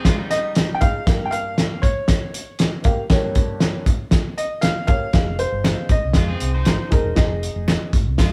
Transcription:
0.05 clean electric guitar G#3 F4, kick, snare, closed hi-hat
0.18 clean electric guitar G3 D#4
0.30 grand piano D#5, snare, closed hi-hat
0.55 snare, closed hi-hat
0.74 grand piano G5
0.81 upright piano D#4 G#4 F5, grand piano F5, kick, closed hi-hat
1.06 upright piano G2 A#3 G4 F5, kick, snare, closed hi-hat
1.25 grand piano G5
1.31 grand piano F5, closed hi-hat
1.58 snare, closed hi-hat
1.82 grand piano C#5, kick, closed hi-hat
2.08 kick, snare, closed hi-hat
2.34 closed hi-hat
2.59 snare, closed hi-hat
2.83 upright piano A#3 G4 F5, kick, closed hi-hat
3.10 upright piano G2 A#3 G4 C#5, kick, snare, closed hi-hat
3.35 kick, closed hi-hat
3.60 snare, closed hi-hat
3.86 kick, closed hi-hat
4.11 kick, snare, closed hi-hat
4.38 grand piano D#5, closed hi-hat
4.61 grand piano F5, snare, closed hi-hat
4.87 upright piano A#3 G4 C#5, grand piano F5, kick, closed hi-hat
5.13 fingered electric bass F1, upright piano D#4 G#4 F5, kick, snare, closed hi-hat
5.39 grand piano C5, closed hi-hat
5.52 fingered electric bass G1
5.64 finger snap, snare, closed hi-hat
5.89 fingered electric bass G#1, grand piano D#5, kick, closed hi-hat
6.04 fingered electric bass C2
6.13 fingered electric bass F2, clean electric guitar G#3 F4, kick, snare, closed hi-hat
6.29 clean electric guitar C4 G#4
6.40 fingered electric bass C2, closed hi-hat
6.54 clean electric guitar D#4 C5
6.65 fingered electric bass G#1, finger snap, snare, closed hi-hat
6.90 fingered electric bass D#1, upright piano D#4 G#4 A#4, kick, closed hi-hat
7.05 fingered electric bass E1
7.15 fingered electric bass F1, upright piano D#4 G4 D#5, kick, snare, closed hi-hat
7.23 upright piano G#4
7.43 closed hi-hat
7.56 fingered electric bass F1
7.68 finger snap, snare, closed hi-hat
7.93 fingered electric bass G#1, kick, closed hi-hat
8.06 fingered electric bass C2
8.18 fingered electric bass F2, clean electric guitar G#3 F4, kick, snare, closed hi-hat

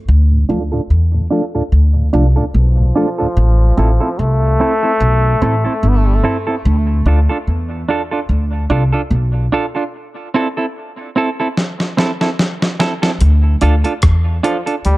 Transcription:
0.08 upright bass D2
0.32 tonewheel organ D2 A2
0.49 upright bass D2, tonewheel organ F3 A3 D4, clean electric guitar D4 F4 A4
0.72 tonewheel organ D2 A2, clean electric guitar D4 F4 A4
0.90 upright bass E2
1.14 tonewheel organ D2 A2
1.30 tonewheel organ F3 A3 D4, clean electric guitar D4 F4 A4
1.55 tonewheel organ D2 A2, clean electric guitar D4 F4 A4
1.72 upright bass D2
1.96 tonewheel organ D2 A2
2.13 upright bass C2, tonewheel organ F3 A3 D4, clean electric guitar D4 F4 A4
2.36 tonewheel organ D2 A2, clean electric guitar D4 F4 A4
2.54 upright bass B1, trombone F3
2.78 tonewheel organ D2 A2
2.96 tonewheel organ F3 A3 D4, clean electric guitar D4 F4 A4
3.18 tonewheel organ D2 A2, clean electric guitar D4 F4 A4
3.37 upright bass A1
3.77 upright bass A1, clean electric guitar C4 E4 A4
4.00 clean electric guitar C4 E4 A4
4.19 upright bass C2, trombone A3
4.60 clean electric guitar C4 E4 A4
4.83 clean electric guitar C4 E4 A4
5.00 upright bass B1
5.42 upright bass A1, clean electric guitar C4 E4 A4
5.65 clean electric guitar C4 E4 A4
5.83 upright bass G1
5.89 trombone B3
5.98 trombone A3
6.07 trombone G3
6.16 trombone A3
6.24 clean electric guitar C4 E4 A4
6.47 clean electric guitar C4 E4 A4
6.65 upright bass D2
7.06 upright bass D2, clean electric guitar D4 F4 A4
7.29 clean electric guitar D4 F4 A4
7.47 upright bass E2
7.89 clean electric guitar D4 F4 A4
8.11 clean electric guitar D4 F4 A4
8.29 upright bass D2
8.70 upright bass C2, clean electric guitar D4 F4 A4
8.93 clean electric guitar D4 F4 A4
9.11 upright bass B1
9.52 clean electric guitar D4 F4 A4
9.75 clean electric guitar D4 F4 A4
10.34 clean electric guitar C4 E4 A4
10.57 clean electric guitar C4 E4 A4
11.16 clean electric guitar C4 E4 A4
11.40 clean electric guitar C4 E4 A4
11.57 snare
11.80 snare
11.97 clean electric guitar C4 E4 A4, snare
12.21 clean electric guitar C4 E4 A4, snare
12.39 snare
12.62 snare
12.80 clean electric guitar C4 E4 A4, snare
13.02 clean electric guitar C4 E4 A4, snare
13.21 upright bass D2, closed hi-hat
13.61 upright bass D2, clean electric guitar D4 F4 A4, closed hi-hat
13.84 clean electric guitar D4 F4 A4, closed hi-hat
14.02 upright bass E2, kick, cross-stick, closed hi-hat
14.43 trombone F3, clean electric guitar D4 F4 A4, closed hi-hat
14.66 clean electric guitar D4 F4 A4, closed hi-hat
14.85 upright bass D2, trombone G3, closed hi-hat

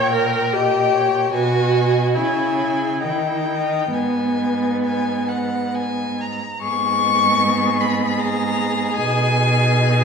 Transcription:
Already playing: cello A#2, violin A#4 G5, viola C#5
0.12 viola A#4
0.53 viola G4, violin D#5 G5
0.94 violin C#5
1.33 cello B2, viola F#4, violin B4 G#5
1.74 violin D#5
2.14 cello C#3, viola E4, violin C#5 G#5
2.57 violin G#4
3.01 cello D#3, viola D#4, violin G4 G5
3.10 viola E4
3.19 viola D#4
3.27 viola E4
3.37 viola D#4
3.45 viola E4, violin A#4
3.54 viola D#4
3.92 viola B3, violin B4 G#5
3.96 cello G#2
4.84 violin G#5
5.28 violin F#5
5.75 violin G#5
6.21 violin A#5
6.62 cello G#2, viola B3, violin G#4 C#6
7.81 violin B5
8.20 violin A#5
8.95 cello B2, viola D#4, violin G#5

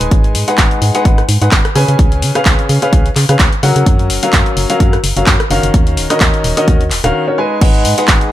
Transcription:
Already playing: upright piano G#3 D#4 G#4 B4 G#5
0.01 fm bass D#1, closed hi-hat
0.11 fm bass G#1, kick, closed hi-hat
0.24 closed hi-hat
0.35 fm bass G#2, open hi-hat
0.48 upright piano G#3 D#4 G#4 B4 F#5, closed hi-hat
0.58 fm bass G#1, kick, clap, closed hi-hat
0.71 closed hi-hat
0.82 fm bass G#2, open hi-hat
0.95 upright piano G#3 D#4 G#4 B4 F#5, closed hi-hat
1.05 fm bass G#1, upright piano D#4 G#4 B4 F#5, kick, closed hi-hat
1.18 cross-stick, closed hi-hat
1.29 fm bass G#2, open hi-hat
1.42 fm bass G#2, upright piano G#3 D#4 G#4 B4 F#5, closed hi-hat
1.51 fm bass G#1, kick, clap, closed hi-hat
1.65 cross-stick, closed hi-hat
1.75 upright piano C#3 C#4 G#4 B4 G#5, fm bass C#3, open hi-hat
1.88 fm bass C#3, closed hi-hat
1.99 fm bass C#2, kick, closed hi-hat
2.12 closed hi-hat
2.22 fm bass C#3, open hi-hat
2.35 upright piano C#3 C#4 G#4 B4 F5, cross-stick, closed hi-hat
2.45 fm bass C#2, kick, clap, closed hi-hat
2.59 closed hi-hat
2.69 fm bass C#3, open hi-hat
2.82 upright piano C#3 C#4 G#4 B4 F5, closed hi-hat
2.93 fm bass C#2, upright piano C#3 C#4 G#4 B4 F5, kick, closed hi-hat
3.06 closed hi-hat
3.16 fm bass C#3, clap, open hi-hat
3.29 upright piano C#3 C#4 G#4 B4 F5, fm bass C#3, cross-stick, closed hi-hat
3.39 fm bass C#2, kick, clap, closed hi-hat
3.53 closed hi-hat
3.63 fm bass C#3, upright piano F#3 C#4 F#4 A#4 F#5, open hi-hat
3.76 fm bass C#3, closed hi-hat
3.86 fm bass F#2, kick, closed hi-hat
3.99 closed hi-hat
4.10 fm bass F#1, open hi-hat
4.23 upright piano F#3 C#4 F#4 A#4 F5, closed hi-hat
4.33 fm bass F#2, kick, clap, closed hi-hat
4.46 closed hi-hat
4.57 fm bass F#1, open hi-hat
4.70 upright piano F#3 C#4 F#4 A#4 F5, closed hi-hat
4.80 fm bass F#2, upright piano F#3 C#4 A#4, kick, closed hi-hat
4.93 cross-stick, closed hi-hat
5.04 fm bass F#1, open hi-hat
5.17 fm bass F#1, upright piano F#3 C#4 F#4 A#4 F5, closed hi-hat
5.27 fm bass F#2, kick, clap, closed hi-hat
5.40 cross-stick, closed hi-hat
5.50 fm bass F#1, upright piano D#3 C#4 F#4 A#4 F5, open hi-hat
5.63 fm bass F#1, closed hi-hat
5.74 fm bass D#2, kick, closed hi-hat
5.87 closed hi-hat
5.97 fm bass D#1, open hi-hat
6.10 upright piano D#3 C#4 F#4 A#4 D#5, cross-stick, closed hi-hat
6.20 fm bass D#2, kick, clap, closed hi-hat
6.34 closed hi-hat
6.44 fm bass D#1, open hi-hat
6.57 upright piano D#3 C#4 F#4 A#4 D#5, closed hi-hat
6.68 fm bass D#2, upright piano D#3 C#4 F#4, kick, closed hi-hat
6.81 closed hi-hat
6.91 fm bass D#1, clap, open hi-hat
7.04 fm bass D#1, upright piano D#3 C#4 F#4 A#4 F5, cross-stick, closed hi-hat
7.27 upright piano D#3 C#4 F#4 A#4 C#5
7.38 upright piano G#3 D#4 G#4 B4 G#5
7.61 fm bass G#1, upright piano G#3 D#4 G#4 B4 F#5, kick, closed hi-hat, crash
7.74 closed hi-hat
7.85 fm bass G#2, open hi-hat
7.98 upright piano G#3 D#4 G#4 B4 F#5, closed hi-hat
8.08 fm bass G#1, kick, clap, closed hi-hat
8.21 closed hi-hat

